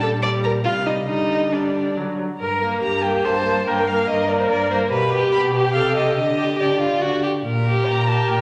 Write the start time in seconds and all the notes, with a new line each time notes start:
Already playing: A#2 G3
0.00 A4 A5
0.22 G3 D5 D6
0.43 A#4 A#5
0.64 C3 G3 F4 F5
0.86 D#4 D#5
1.08 D3 G3 D#4 D#5
1.52 G3 D4 D5
1.96 D3 F#3
2.39 G2 A#4
2.60 A#3
2.82 G2 G4 A#5
3.03 A#3 G5
3.24 G2 C5 A5
3.45 A#3
3.67 G2 A#3 A#4 G5
3.88 A#3 F5
4.08 G2 A#4 D#5
4.28 A#3 D5
4.40 C5
4.49 G2 D5
4.70 A#3 C5
4.90 B2 G4 B4
5.13 G4
5.32 B2 B5
5.55 G4
5.64 G5
5.74 C3 G4 A4 F5
5.96 G4 D#5
6.17 D3 G4 D#5
6.38 G4
6.59 D3 G4 D5
6.81 F4
7.02 D3 F#4
7.23 G4
7.45 A#2 A#4
7.66 G4
7.87 A#2 A#4 A#5
8.08 G4 A5
8.30 A#2 G5